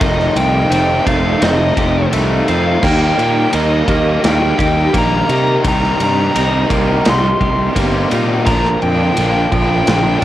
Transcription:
0.00 fingered electric bass F1, overdriven electric guitar F2 C3 D#3 A3 D#4 F4, clean electric guitar D#3, lead electric guitar D#5, kick, ride
0.19 snare
0.36 fingered electric bass C2, overdriven electric guitar A3 D#4 F4, lead electric guitar G5, ride
0.40 overdriven electric guitar D#3
0.70 fingered electric bass F1, overdriven electric guitar F2 C3 D#3 A3 D#4, clean electric guitar C4, ride
0.75 overdriven electric guitar F4
1.05 fingered electric bass F1, overdriven electric guitar F2 C3 A3 D#4 F4, clean electric guitar A3, lead electric guitar F5, kick, ride
1.10 overdriven electric guitar D#3
1.41 fingered electric bass F1, overdriven electric guitar F2 C3 D#3 A3, clean electric guitar C4, lead electric guitar D#5, snare, ride
1.45 overdriven electric guitar D#4 F4
1.77 fingered electric bass F1, overdriven electric guitar D#3 A3 D#4 F4, clean electric guitar G4, kick, ride
2.11 fingered electric bass C2, overdriven electric guitar F2 C3 D#3 A3 D#4, clean electric guitar A3, ride
2.15 overdriven electric guitar F4
2.47 overdriven electric guitar F2 C3 D#3 A3 D#4 F4, fingered electric bass F2, clean electric guitar C4, lead electric guitar F5, ride
2.82 fingered electric bass D#2, overdriven electric guitar D#3 G3 A#3 D#4 G4, clean electric guitar A#3, lead electric guitar G5, kick, crash
3.17 fingered electric bass A#2, overdriven electric guitar A#3 D#4 G4, ride
3.52 fingered electric bass D#2, overdriven electric guitar D#3 G3 A#3 D#4 G4, lead electric guitar D#5, ride
3.88 fingered electric bass D#2, overdriven electric guitar D#3 G3 A#3 D#4 G4, clean electric guitar A#3, kick, ride
4.24 fingered electric bass D#2, overdriven electric guitar D#3 G3 A#3 D#4 G4, lead electric guitar G5, snare, ride
4.58 fingered electric bass D#2, overdriven electric guitar A#3 D#4 G4, clean electric guitar G4, kick, ride
4.93 fingered electric bass A#1, overdriven electric guitar D#3 G3 A#3 D#4 G4, clean electric guitar A#3, kick, ride
4.98 lead electric guitar A#5
5.28 fingered electric bass C3, overdriven electric guitar D#3 G3 D#4 G4, ride
5.32 overdriven electric guitar A#3
5.63 fingered electric bass C2, overdriven electric guitar C3 D#3 G3 C4 D#4 G4, clean electric guitar D#3, kick, ride
5.68 lead electric guitar A#5
5.84 snare
5.99 fingered electric bass G2, overdriven electric guitar G3 C4 G4, ride
6.03 lead electric guitar A#5
6.35 fingered electric bass C2, overdriven electric guitar C3 D#3 G3 C4 D#4 G4, clean electric guitar D#4, ride
6.69 fingered electric bass C2, overdriven electric guitar C3 G3 C4 D#4 G4, clean electric guitar A#3, kick, ride
7.05 fingered electric bass C2, overdriven electric guitar C3 D#3 G3 C4 D#4 G4, clean electric guitar D#4, snare, ride
7.10 lead electric guitar C6
7.41 fingered electric bass C2, overdriven electric guitar G3 C4 G4, clean electric guitar G4, kick, ride
7.74 fingered electric bass G1, overdriven electric guitar C3 D#3 G3 C4 D#4, clean electric guitar A#3, kick, ride
7.78 overdriven electric guitar G4
8.09 fingered electric bass A#2, overdriven electric guitar C3 C4 D#4 G4, clean electric guitar D#4, ride
8.13 overdriven electric guitar G3
8.45 fingered electric bass A#1, overdriven electric guitar A#2 D3 F3 A#3 D4 F4, clean electric guitar F3, lead electric guitar A#5, kick, ride
8.65 snare
8.81 fingered electric bass F2, overdriven electric guitar A#3 D4 F4, lead electric guitar G5, ride
9.17 fingered electric bass A#1, overdriven electric guitar A#2 D3 F3 A#3 D4 F4, ride
9.52 fingered electric bass A#1, overdriven electric guitar A#2 D3 F3 A#3 D4 F4, clean electric guitar F3, lead electric guitar G5, kick, ride
9.87 fingered electric bass A#1, overdriven electric guitar A#2 D3 F3 A#3 D4 F4, snare, ride
10.20 lead electric guitar F5

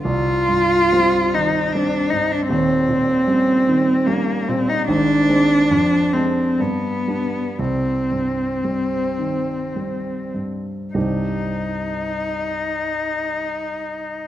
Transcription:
0.03 grand piano C2, cello F4
0.49 grand piano G2
0.93 grand piano G3 C4
1.34 grand piano D#3, cello D#4
1.72 grand piano G3 C4, cello D4
2.10 grand piano G2, cello D#4
2.32 cello D4
2.48 grand piano D#1 D#2, cello C4
2.88 grand piano A#2
3.27 grand piano G3 C#4
3.67 grand piano D#3
4.06 grand piano G3 C#4, cello A#3
4.48 grand piano A#2, cello C4
4.69 cello D#4
4.88 grand piano G#1 G#2, cello D4
5.29 grand piano G#3 C4
5.71 grand piano F2
6.13 grand piano G#3 D4, cello C4
6.60 grand piano G2, cello B3
7.08 grand piano G3 D4
7.59 grand piano C2, cello C4
8.12 grand piano G2
8.64 grand piano G3 C4
9.18 grand piano D#3
9.76 grand piano G3 C4
10.34 grand piano G2
10.94 grand piano C2 G2 G3 C4 D#4 G4, cello D#4

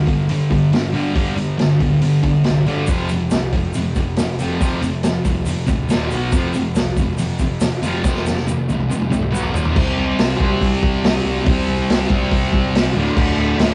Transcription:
0.06 picked electric bass G1, distorted electric guitar G2 D3, kick, open hi-hat
0.29 picked electric bass G1, distorted electric guitar G2 D3, open hi-hat
0.50 picked electric bass G1, distorted electric guitar G2 D3, kick, open hi-hat
0.72 picked electric bass G1, distorted electric guitar G2 D3, snare, open hi-hat
0.93 picked electric bass G1, distorted electric guitar G2 D3 G3, open hi-hat
1.15 picked electric bass G1, distorted electric guitar G2 D3 G3, kick, open hi-hat
1.37 picked electric bass G1, distorted electric guitar G2 D3, open hi-hat
1.58 picked electric bass G1, distorted electric guitar G2 D3, snare, open hi-hat
1.80 picked electric bass D1, distorted electric guitar G2 D3, kick, open hi-hat
2.01 distorted electric guitar G2 D3, picked electric bass G2, open hi-hat
2.23 picked electric bass G1, distorted electric guitar G2 D3, kick, open hi-hat
2.44 picked electric bass C2, distorted electric guitar G2 D3, snare, open hi-hat
2.66 picked electric bass G1, distorted electric guitar G2 D3 G3, open hi-hat
2.87 picked electric bass F1, distorted electric guitar F2 C3 F3, kick, open hi-hat, shaker
3.09 picked electric bass F1, distorted electric guitar F2 C3, open hi-hat, shaker
3.30 picked electric bass C2, distorted electric guitar F2 C3, snare, open hi-hat, shaker
3.53 picked electric bass F1, distorted electric guitar F2 C3, kick, open hi-hat
3.73 picked electric bass F1, distorted electric guitar F2 C3, open hi-hat, shaker
3.95 picked electric bass F1, distorted electric guitar F2 C3, kick, open hi-hat, shaker
4.16 picked electric bass F1, distorted electric guitar F2 C3, snare, open hi-hat, shaker
4.39 picked electric bass F1, distorted electric guitar F2 C3 F3, open hi-hat, shaker
4.61 picked electric bass F1, distorted electric guitar F2 C3 F3, kick, open hi-hat, shaker
4.81 picked electric bass F1, distorted electric guitar F2 C3, open hi-hat, shaker
5.03 picked electric bass F1, distorted electric guitar F2 C3, snare, open hi-hat, shaker
5.25 picked electric bass C2, distorted electric guitar F2 C3, kick, open hi-hat, shaker
5.45 picked electric bass F2, distorted electric guitar F2 C3, open hi-hat, shaker
5.67 picked electric bass D1, distorted electric guitar F2 C3, kick, open hi-hat, shaker
5.89 picked electric bass D#1, distorted electric guitar D#2 A#2 D#3, snare, open hi-hat, shaker
6.10 picked electric bass B1, distorted electric guitar B2 F#3 B3, open hi-hat, shaker
6.32 picked electric bass F1, distorted electric guitar F2 C3 F3, kick, open hi-hat, shaker
6.53 picked electric bass F1, distorted electric guitar F2 C3, open hi-hat, shaker
6.74 picked electric bass C2, distorted electric guitar F2 C3, snare, open hi-hat, shaker
6.97 picked electric bass F1, distorted electric guitar F2 C3, kick, open hi-hat, shaker
7.18 picked electric bass F1, distorted electric guitar F2 C3, open hi-hat, shaker
7.39 picked electric bass F1, distorted electric guitar F2 C3, kick, open hi-hat, shaker
7.60 picked electric bass F1, distorted electric guitar F2 C3, snare, open hi-hat, shaker
7.82 picked electric bass F1, distorted electric guitar F2 C3 F3, open hi-hat, shaker
8.03 picked electric bass F1, distorted electric guitar F2 C3 F3, kick, snare, shaker
8.16 snare
8.26 picked electric bass F1, distorted electric guitar F2 C3, snare, shaker
8.37 snare
8.47 picked electric bass F1, distorted electric guitar F2 C3, high tom, shaker
8.57 high tom
8.68 picked electric bass C2, distorted electric guitar F2 C3, high tom, shaker
8.80 mid tom
8.88 distorted electric guitar F2 C3, picked electric bass F2, mid tom, shaker
9.02 mid tom
9.10 picked electric bass C2, distorted electric guitar F2 C3, mid tom, shaker
9.22 mid tom
9.31 picked electric bass B1, distorted electric guitar B2 F#3 B3, mid tom, shaker
9.43 floor tom
9.52 picked electric bass D#1, distorted electric guitar D#2 A#2 D#3, floor tom, shaker
9.65 floor tom
9.73 picked electric bass C2, distorted electric guitar C3 G3, kick, crash
9.78 distorted electric guitar C4
9.98 picked electric bass C2
10.18 picked electric bass C2, snare, open hi-hat
10.37 picked electric bass C2, distorted electric guitar G3 C4, kick
10.42 distorted electric guitar C3
10.61 picked electric bass C2, kick, open hi-hat
10.83 picked electric bass C2, kick
11.04 picked electric bass C2, snare, open hi-hat
11.25 picked electric bass C2
11.45 picked electric bass C2, distorted electric guitar C3 G3, kick, open hi-hat
11.50 distorted electric guitar C4
11.68 picked electric bass C2
11.89 picked electric bass C2, snare, open hi-hat
12.07 picked electric bass C2, distorted electric guitar G3 C4, kick
12.13 distorted electric guitar C3
12.32 picked electric bass C2, kick, open hi-hat
12.53 picked electric bass C2, kick
12.73 picked electric bass C2, snare, open hi-hat
12.94 picked electric bass D1, distorted electric guitar D2 A2
13.00 distorted electric guitar D3
13.17 picked electric bass D1, kick, crash
13.38 picked electric bass D1
13.58 picked electric bass D1, distorted electric guitar D2 A2, snare, open hi-hat
13.63 distorted electric guitar D3

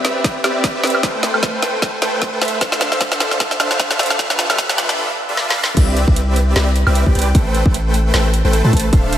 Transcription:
Already playing: supersaw synth C4 G4 B4 D5 E5
0.05 snare, closed hi-hat
0.24 supersaw synth C4 B4 D5, kick, snare, closed hi-hat
0.44 supersaw synth C4 G4 B4 D5 E5, snare, closed hi-hat, high woodblock
0.64 kick, snare, closed hi-hat
0.75 supersaw synth C4 G4 B4 D5 E5
0.83 supersaw synth C4 G4 B4 D5 E5, snare, closed hi-hat
0.87 closed hi-hat
0.90 closed hi-hat
0.95 high woodblock
1.03 supersaw synth A3 A4 B4 C5, kick, snare, closed hi-hat
1.23 snare, closed hi-hat
1.34 supersaw synth A3 A4 B4 C5 G5, high woodblock
1.43 kick, snare, closed hi-hat
1.62 snare, closed hi-hat
1.82 supersaw synth A3 A4 G5, kick, snare, closed hi-hat
2.02 supersaw synth A3 A4 B4 C5 G5, snare, closed hi-hat
2.22 kick, snare, closed hi-hat
2.33 supersaw synth A3 A4 B4 C5 G5
2.41 supersaw synth A3 A4 B4 C5 E5, snare, closed hi-hat
2.45 closed hi-hat
2.48 closed hi-hat
2.61 supersaw synth D4 A4 C5 E5 F5, kick, snare, closed hi-hat
2.72 snare
2.81 snare, closed hi-hat
2.92 supersaw synth D4 A4 C5 E5 F5, snare
3.01 kick, snare, closed hi-hat
3.12 snare
3.20 snare, closed hi-hat
3.31 snare
3.40 supersaw synth D4 A4 C5 F5, kick, snare, closed hi-hat
3.51 snare
3.60 supersaw synth D4 A4 C5 E5 F5, snare, closed hi-hat, high woodblock
3.71 snare
3.80 kick, snare, closed hi-hat
3.91 supersaw synth D4 A4 C5 E5 F5, snare
3.99 supersaw synth D4 A4 C5 E5 F5, snare, closed hi-hat
4.03 closed hi-hat
4.06 closed hi-hat
4.10 snare, high woodblock
4.19 supersaw synth G3 F4 A4 B4 E5, kick, snare, closed hi-hat
4.30 snare
4.39 snare, closed hi-hat
4.50 supersaw synth G3 D4 F4 A4 B4 E5, snare, high woodblock
4.58 kick, snare, closed hi-hat
4.69 snare
4.78 snare, closed hi-hat
4.89 snare
4.98 supersaw synth G3 D4 F4 A4 B4 E5
5.29 supersaw synth G3 D4 F4 A4 B4 E5
5.37 snare
5.48 supersaw synth G3 D4 F4 A4 B4 F5, snare
5.57 supersaw synth G3 D4 F4 A4 B4 F5
5.64 snare
5.77 808-style bass C2, supersaw synth C4 G4 B4 D5 E5, kick, closed hi-hat, crash
5.97 closed hi-hat
6.08 808-style bass C2, supersaw synth C4 G4 B4 D5 E5, kick
6.16 closed hi-hat
6.36 closed hi-hat
6.56 808-style bass C2, supersaw synth C4 G4 B4 D5 E5, snare, closed hi-hat
6.76 closed hi-hat
6.87 808-style bass C2, supersaw synth C4 G4 B4 D5 E5, high woodblock
6.95 closed hi-hat
7.06 808-style bass C2, supersaw synth C4 G4 B4 D5 G5, kick
7.15 808-style bass C2, supersaw synth C4 G4 B4 D5 G5, closed hi-hat
7.19 closed hi-hat
7.22 closed hi-hat
7.35 supersaw synth A3 A4 B4 C5, kick, closed hi-hat
7.55 closed hi-hat
7.66 808-style bass A1, supersaw synth A3 A4 B4 C5, kick
7.74 closed hi-hat
7.94 closed hi-hat
8.14 808-style bass A1, supersaw synth A3 A4 B4 C5 G5, snare, closed hi-hat
8.34 closed hi-hat
8.45 808-style bass A1, supersaw synth A3 A4 B4 C5 G5
8.53 closed hi-hat
8.64 808-style bass A2, supersaw synth A3 A4 B4 C5 A5
8.73 808-style bass A1, supersaw synth A3 A4 B4 C5 A5, kick, closed hi-hat
8.77 closed hi-hat
8.80 closed hi-hat
8.93 supersaw synth D4 A4 C5 E5 F5, kick, closed hi-hat
9.13 closed hi-hat

